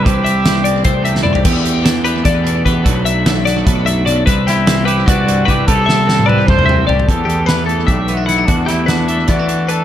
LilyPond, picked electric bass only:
\new Staff \with { instrumentName = "Picked electric bass" } { \clef bass \time 7/8 \key e \minor \tempo 4 = 150 c,2 c,4 c,8 | e,2 e,4 e,8 | b,,2 b,,4 b,,8 | c,2 c,4 c,8 |
c,2 c,4 c,8 | e,8 e,4. b,,4. | e,2 e4. | }